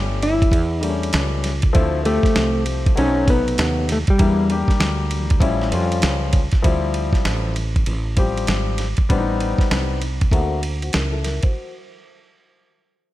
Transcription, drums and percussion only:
0.23 ride medium
0.42 kick medium
0.42 ride soft
0.52 kick loud
0.52 ride medium
0.83 ride medium
1.03 ride soft
1.13 snare loud
1.13 hi-hat pedal medium
1.13 ride medium
1.44 snare soft
1.44 ride medium
1.62 kick medium
1.62 ride soft
1.75 kick loud
1.75 ride medium
2.05 ride soft
2.23 kick medium
2.23 snare soft
2.23 ride soft
2.36 snare loud
2.36 hi-hat pedal medium
2.36 ride medium
2.66 ride medium
2.86 kick loud
2.86 ride soft
2.97 ride medium
3.28 kick medium
3.28 ride medium
3.48 ride soft
3.58 snare loud
3.58 hi-hat pedal medium
3.58 ride medium
3.89 snare soft
3.89 ride medium
4.07 kick loud
4.07 ride soft
4.19 kick loud
4.19 ride medium
4.50 ride soft
4.68 kick medium
4.68 snare soft
4.68 ride soft
4.80 snare loud
4.80 hi-hat pedal medium
4.80 ride medium
5.11 ride medium
5.30 kick medium
5.30 ride soft
5.41 kick loud
5.41 ride medium
5.61 snare soft
5.72 ride medium
5.92 ride soft
6.02 snare loud
6.02 hi-hat pedal medium
6.02 ride medium
6.33 kick loud
6.33 ride medium
6.52 kick medium
6.52 snare soft
6.52 ride soft
6.64 kick loud
6.64 ride medium
6.94 ride soft
7.13 kick medium
7.13 snare soft
7.13 ride soft
7.25 snare loud
7.25 hi-hat pedal soft
7.25 ride medium
7.56 ride soft
7.76 kick medium
7.76 ride soft
7.86 ride medium
8.17 kick medium
8.17 ride medium
8.37 ride soft
8.47 snare loud
8.47 hi-hat pedal medium
8.47 ride medium
8.78 snare soft
8.78 ride medium
8.97 kick medium
8.97 ride soft
9.10 kick loud
9.10 ride medium
9.40 ride soft
9.58 kick loud
9.58 snare soft
9.58 ride soft
9.71 snare loud
9.71 hi-hat pedal soft
9.71 ride medium
10.02 ride soft
10.21 kick medium
10.21 ride soft
10.31 kick loud
10.31 ride medium
10.63 ride medium
10.82 ride soft
10.93 snare loud
10.93 hi-hat pedal soft
10.93 ride medium
11.24 snare soft
11.24 ride soft
11.43 kick medium
11.43 ride soft

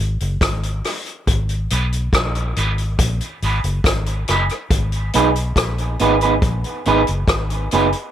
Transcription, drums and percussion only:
0.00 closed hi-hat soft
0.20 closed hi-hat medium
0.41 kick loud
0.41 cross-stick loud
0.41 closed hi-hat loud
0.63 closed hi-hat soft
0.84 cross-stick medium
0.84 open hi-hat medium
1.06 closed hi-hat soft
1.27 kick loud
1.27 closed hi-hat medium
1.49 closed hi-hat medium
1.70 closed hi-hat medium
1.92 closed hi-hat soft
2.13 kick medium
2.13 cross-stick loud
2.13 closed hi-hat medium
2.35 closed hi-hat medium
2.56 closed hi-hat medium
2.78 closed hi-hat medium
2.99 kick loud
2.99 closed hi-hat medium
3.21 closed hi-hat soft
3.42 closed hi-hat medium
3.64 closed hi-hat medium
3.84 kick loud
3.84 cross-stick loud
3.84 closed hi-hat medium
4.06 closed hi-hat medium
4.28 cross-stick medium
4.28 closed hi-hat medium
4.49 closed hi-hat soft
4.70 kick loud
4.70 closed hi-hat medium
4.92 closed hi-hat soft
5.13 closed hi-hat medium
5.36 closed hi-hat medium
5.56 kick loud
5.56 cross-stick loud
5.56 closed hi-hat medium
5.78 closed hi-hat soft
5.99 closed hi-hat medium
6.21 closed hi-hat medium
6.42 kick loud
6.42 closed hi-hat medium
6.64 closed hi-hat soft
6.85 closed hi-hat medium
7.07 closed hi-hat medium
7.28 kick loud
7.28 cross-stick loud
7.28 closed hi-hat medium
7.50 closed hi-hat medium
7.71 closed hi-hat medium
7.92 closed hi-hat medium

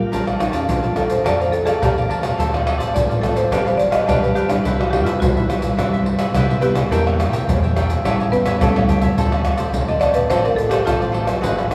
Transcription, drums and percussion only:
0.13 pandeiro medium
0.13 shaker medium
0.13 surdo medium
0.27 pandeiro soft
0.27 tamborim medium
0.27 shaker soft
0.40 pandeiro medium
0.40 tamborim medium
0.40 shaker medium
0.53 pandeiro medium
0.53 shaker medium
0.69 pandeiro medium
0.69 shaker medium
0.69 surdo loud
0.84 pandeiro soft
0.84 shaker soft
0.96 pandeiro medium
0.96 tamborim medium
0.96 shaker medium
1.10 pandeiro medium
1.10 shaker medium
1.26 pandeiro medium
1.26 tamborim medium
1.26 shaker medium
1.26 surdo medium
1.41 pandeiro soft
1.41 shaker soft
1.53 pandeiro medium
1.53 shaker medium
1.67 pandeiro medium
1.67 tamborim medium
1.67 shaker medium
1.83 pandeiro medium
1.83 tamborim medium
1.83 shaker medium
1.83 surdo loud
1.98 pandeiro soft
1.98 shaker soft
2.11 pandeiro medium
2.23 pandeiro medium
2.23 tamborim medium
2.23 shaker medium
2.40 pandeiro medium
2.40 shaker medium
2.40 surdo medium
2.54 pandeiro soft
2.54 tamborim medium
2.54 shaker soft
2.67 pandeiro medium
2.67 tamborim medium
2.80 pandeiro medium
2.80 shaker medium
2.96 pandeiro medium
2.96 shaker medium
2.96 surdo loud
3.11 pandeiro soft
3.11 shaker soft
3.23 pandeiro medium
3.23 tamborim medium
3.23 shaker medium
3.23 surdo medium
3.37 pandeiro medium
3.37 shaker medium
3.52 pandeiro medium
3.52 tamborim medium
3.52 shaker medium
3.52 surdo medium
3.67 pandeiro soft
3.67 shaker soft
3.79 pandeiro medium
3.79 shaker medium
3.92 pandeiro medium
3.92 tamborim medium
3.92 shaker medium
4.09 pandeiro medium
4.09 tamborim medium
4.09 shaker medium
4.09 surdo loud
4.24 pandeiro soft
4.24 shaker soft
4.36 pandeiro medium
4.36 shaker medium
4.50 pandeiro medium
4.50 tamborim medium
4.50 shaker medium
4.65 pandeiro medium
4.65 shaker medium
4.65 surdo medium
4.81 pandeiro soft
4.81 tamborim medium
4.81 shaker soft
4.93 pandeiro medium
4.93 tamborim medium
5.06 pandeiro medium
5.06 shaker medium
5.22 pandeiro medium
5.22 shaker medium
5.22 surdo loud
5.37 pandeiro soft
5.37 shaker soft
5.50 pandeiro medium
5.50 tamborim medium
5.50 shaker medium
5.50 surdo medium
5.62 pandeiro medium
5.62 shaker medium
5.79 pandeiro medium
5.79 tamborim medium
5.79 shaker medium
5.79 surdo medium
5.94 pandeiro soft
5.94 shaker soft
6.06 pandeiro medium
6.19 pandeiro medium
6.19 tamborim medium
6.19 shaker medium
6.34 pandeiro medium
6.34 tamborim medium
6.34 shaker medium
6.34 surdo medium
6.50 pandeiro soft
6.50 shaker soft
6.62 pandeiro medium
6.62 shaker medium
6.75 pandeiro medium
6.75 tamborim medium
6.75 shaker medium
6.92 pandeiro medium
6.92 shaker medium
6.92 surdo medium
7.07 pandeiro soft
7.07 tamborim medium
7.07 shaker soft
7.20 pandeiro medium
7.20 tamborim medium
7.20 shaker medium
7.33 pandeiro medium
7.33 shaker medium
7.49 pandeiro medium
7.49 shaker medium
7.49 surdo loud
7.64 pandeiro soft
7.64 shaker soft
7.76 pandeiro medium
7.76 tamborim medium
7.76 shaker medium
7.76 surdo medium
7.90 pandeiro medium
7.90 shaker medium
8.05 pandeiro medium
8.05 tamborim medium
8.05 shaker medium
8.05 surdo medium
8.20 pandeiro soft
8.20 shaker soft
8.33 pandeiro medium
8.33 shaker medium
8.46 pandeiro medium
8.46 tamborim medium
8.46 shaker medium
8.61 pandeiro medium
8.61 tamborim medium
8.61 shaker medium
8.61 surdo loud
8.76 pandeiro soft
8.76 tamborim medium
8.76 shaker soft
8.89 surdo medium
8.89 pandeiro medium
8.89 shaker medium
9.01 pandeiro medium
9.01 shaker medium
9.01 surdo medium
9.18 pandeiro medium
9.18 shaker medium
9.18 surdo medium
9.32 pandeiro soft
9.32 tamborim medium
9.32 shaker soft
9.45 pandeiro medium
9.45 tamborim medium
9.45 shaker medium
9.58 pandeiro medium
9.58 shaker medium
9.74 pandeiro medium
9.74 shaker medium
9.74 surdo loud
9.88 pandeiro soft
9.88 shaker soft
10.01 pandeiro medium
10.01 tamborim medium
10.01 shaker medium
10.01 surdo medium
10.14 pandeiro medium
10.14 shaker medium
10.30 pandeiro medium
10.30 tamborim medium
10.30 shaker medium
10.30 surdo medium
10.45 pandeiro soft
10.45 shaker soft
10.58 pandeiro medium
10.58 shaker medium
10.71 pandeiro medium
10.71 tamborim medium
10.71 shaker medium
10.87 pandeiro medium
10.87 tamborim medium
10.87 shaker medium
10.87 surdo medium
11.02 pandeiro soft
11.02 shaker soft
11.14 pandeiro medium
11.27 pandeiro medium
11.27 tamborim medium
11.27 shaker medium
11.44 pandeiro medium
11.44 shaker medium
11.44 surdo medium
11.59 pandeiro soft
11.59 tamborim medium
11.59 shaker soft
11.71 pandeiro medium
11.71 tamborim medium
11.71 shaker medium

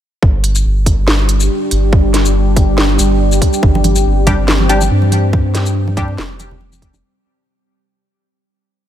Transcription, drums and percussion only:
0.23 kick loud
0.44 closed hi-hat medium
0.55 closed hi-hat soft
0.55 shaker medium
0.86 kick medium
0.86 closed hi-hat medium
1.08 snare loud
1.29 closed hi-hat medium
1.40 shaker medium
1.71 closed hi-hat medium
1.93 kick loud
2.14 snare medium
2.14 closed hi-hat medium
2.26 closed hi-hat soft
2.26 shaker medium
2.56 kick loud
2.56 closed hi-hat medium
2.78 snare loud
2.99 closed hi-hat medium
2.99 shaker medium
3.32 shaker medium
3.42 kick medium
3.42 closed hi-hat medium
3.53 shaker medium
3.63 kick loud
3.75 muted conga medium
3.84 closed hi-hat medium
3.84 high conga medium
3.96 closed hi-hat soft
3.96 muted conga medium
3.96 shaker medium
4.27 kick medium
4.27 closed hi-hat medium
4.27 muted conga medium
4.27 high conga medium
4.27 low conga medium
4.48 snare loud
4.48 muted conga medium
4.60 high conga medium
4.69 closed hi-hat medium
4.81 muted conga medium
4.81 shaker medium
5.02 muted conga medium
5.12 closed hi-hat medium
5.12 high conga medium
5.33 kick loud
5.33 muted conga medium
5.55 snare medium
5.55 closed hi-hat medium
5.55 muted conga soft
5.66 closed hi-hat soft
5.66 shaker medium
5.87 muted conga medium
5.97 kick loud
5.97 closed hi-hat medium
5.97 high conga medium
5.97 low conga medium
6.08 muted conga medium
6.18 snare loud
6.39 closed hi-hat medium
6.39 muted conga medium
6.39 shaker medium
6.51 low conga medium
6.61 muted conga medium
6.72 high conga medium
6.72 shaker medium
6.82 kick medium
6.82 closed hi-hat medium
6.93 muted conga medium
6.93 high conga loud
6.93 shaker medium

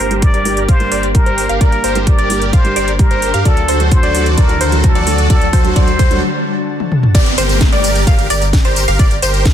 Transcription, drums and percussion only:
0.11 closed hi-hat soft
0.22 kick loud
0.22 closed hi-hat medium
0.34 closed hi-hat soft
0.45 open hi-hat medium
0.57 closed hi-hat soft
0.69 kick loud
0.69 closed hi-hat medium
0.80 closed hi-hat soft
0.92 open hi-hat loud
1.03 closed hi-hat soft
1.15 kick loud
1.15 closed hi-hat medium
1.26 closed hi-hat soft
1.38 open hi-hat medium
1.49 closed hi-hat soft
1.61 kick loud
1.61 closed hi-hat medium
1.72 closed hi-hat soft
1.84 open hi-hat loud
1.95 closed hi-hat soft
2.07 kick loud
2.07 closed hi-hat medium
2.19 closed hi-hat soft
2.30 open hi-hat medium
2.42 closed hi-hat soft
2.53 kick loud
2.53 closed hi-hat medium
2.65 closed hi-hat soft
2.76 open hi-hat loud
2.88 closed hi-hat soft
2.99 kick loud
2.99 closed hi-hat medium
3.11 closed hi-hat soft
3.22 open hi-hat loud
3.34 closed hi-hat soft
3.45 kick loud
3.45 closed hi-hat medium
3.57 closed hi-hat soft
3.68 open hi-hat loud
3.80 closed hi-hat soft
3.92 kick loud
3.92 closed hi-hat medium
4.03 closed hi-hat soft
4.15 open hi-hat loud
4.26 closed hi-hat soft
4.38 kick loud
4.38 closed hi-hat medium
4.49 closed hi-hat soft
4.61 open hi-hat loud
4.72 closed hi-hat soft
4.84 kick loud
4.84 closed hi-hat medium
4.95 closed hi-hat soft
5.07 open hi-hat loud
5.18 closed hi-hat soft
5.30 kick loud
5.30 closed hi-hat medium
5.42 closed hi-hat soft
5.53 kick loud
5.53 open hi-hat loud
5.65 closed hi-hat soft
5.76 kick loud
5.76 closed hi-hat medium
5.88 closed hi-hat soft
5.99 kick loud
5.99 open hi-hat loud
6.11 closed hi-hat soft
6.80 high tom medium
6.92 mid tom medium
7.03 mid tom medium
7.15 kick loud
7.15 closed hi-hat loud
7.15 crash loud
7.15 tambourine soft
7.26 closed hi-hat soft
7.26 tambourine soft
7.38 open hi-hat loud
7.38 tambourine medium
7.49 closed hi-hat soft
7.49 tambourine soft
7.61 kick loud
7.61 snare loud
7.61 closed hi-hat loud
7.72 closed hi-hat soft
7.72 tambourine soft
7.84 open hi-hat loud
7.84 tambourine medium
7.95 closed hi-hat soft
7.95 tambourine soft
8.07 kick loud
8.07 closed hi-hat loud
8.07 tambourine soft
8.19 closed hi-hat soft
8.19 tambourine soft
8.30 open hi-hat loud
8.30 tambourine medium
8.42 closed hi-hat soft
8.42 tambourine soft
8.53 kick loud
8.53 snare loud
8.53 closed hi-hat medium
8.53 tambourine soft
8.65 closed hi-hat soft
8.65 tambourine soft
8.76 open hi-hat medium
8.76 tambourine medium
8.88 closed hi-hat soft
8.88 tambourine soft
8.99 kick loud
8.99 closed hi-hat loud
8.99 tambourine soft
9.11 closed hi-hat soft
9.11 tambourine soft
9.22 open hi-hat loud
9.22 tambourine medium
9.34 closed hi-hat soft
9.34 tambourine soft
9.45 kick loud
9.45 snare loud
9.45 closed hi-hat medium
9.45 tambourine soft

